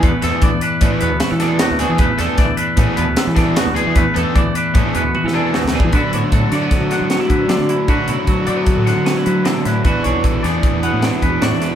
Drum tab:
HH |x--x--x--x--x--x--x--x--x--x--|x--x--x--x--x--x--x--x--x--x--|x--x--x--x--x--x--------------|x--x--x--x--x--x--x--x--x--x--|
SD |---o--------------o--o--o--o--|---o--o-----------o--o--o-----|--------------------o---o-o---|---------o--o--o--o-----o-----|
T1 |------------------------------|------------------------------|------------------o-----------|------------------------------|
BD |o-----o-----o-----------------|o-----o-----o--------o--------|o-----o-----o---------------o-|o-----o-----o--------o--------|

HH |x--x--x--x--x--x--x--x--x--x--|x--x--x--x--x--x--x--x--x--x--|
SD |---------------o--o-----o--o--|---------o--------o-----o--o--|
T1 |------------------------------|------------------------------|
BD |o-----o-----o-----------------|o-----o-----o--------o--------|